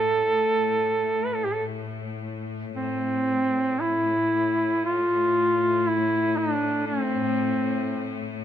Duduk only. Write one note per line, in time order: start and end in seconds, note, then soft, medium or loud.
0.00 1.27 A4 loud
1.26 1.36 B4 medium
1.35 1.46 A4 medium
1.45 1.56 G4 medium
1.54 1.65 A4 medium
2.75 3.82 C4 medium
3.81 4.84 E4 medium
4.85 5.90 F4 medium
5.88 6.39 E4 loud
6.38 6.86 D4 medium
6.87 8.33 C4 medium